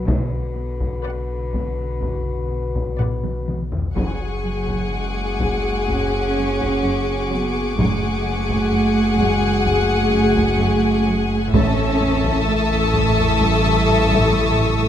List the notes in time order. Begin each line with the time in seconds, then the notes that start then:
0.07 B1 B2 D3 F#4 B4, taiko
0.56 B3
0.81 taiko
1.05 B2 B4 D5 F#5
1.54 B2, taiko
2.02 F#1 B2, taiko
2.51 B2
2.75 taiko
2.99 B2 B4 D5 F#5, taiko low-mid
3.24 taiko mid
3.48 B3, taiko mid
3.72 taiko low
3.95 F#1 F#2 F#4 G#4 F#5 G#5 C#6, taiko
4.44 F#3
4.68 taiko
4.91 F#2 G#3 D6
5.40 F#2, taiko
5.89 F#2 C#4, taiko
6.37 F#2
6.61 taiko
6.83 F#2
7.31 F#3 B3
7.78 F#1 F#2 A3 F#4 G#4 F#5 G#5, taiko
8.25 F#3
8.50 taiko
8.72 F#2
9.19 F#2 G#3, taiko
9.65 F#2 A3, taiko
10.12 F#2
10.36 taiko
10.58 F#2
11.07 F#3
11.53 A1 A2 C#4 E4 A4 E5 A5 C#6 D#6 E6, taiko
11.61 A2
11.68 A2
11.76 A2
11.83 A2
11.91 A2
11.97 A2 A3, taiko low
12.05 A2
12.12 A2
12.19 A2
12.24 A2, taiko
12.34 A2
12.41 A2
12.47 A2 A3
12.56 A2
12.64 A2
12.71 A2, taiko low
12.78 A2
12.85 A2
12.92 A2, taiko
13.00 A2
13.08 A2
13.18 taiko low
13.23 A2
13.30 A2
13.37 A2, taiko
13.41 A2 G3
13.52 A2
13.60 A2
13.66 A2
13.75 A2
13.82 A2
13.88 A2
13.97 A2
14.06 A2
14.13 A2, taiko
14.21 A2
14.28 A2
14.36 A2
14.44 A2
14.51 A2
14.60 A2
14.68 A2
14.75 A2
14.82 A2 F3 A3